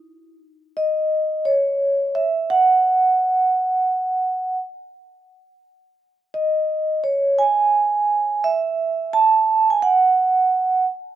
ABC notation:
X:1
M:4/4
L:1/16
Q:"Swing 16ths" 1/4=86
K:F#dor
V:1 name="Vibraphone"
z4 d4 c4 e2 f2- | f8- f2 z6 | z4 d4 c2 g6 | e4 a3 g f6 z2 |]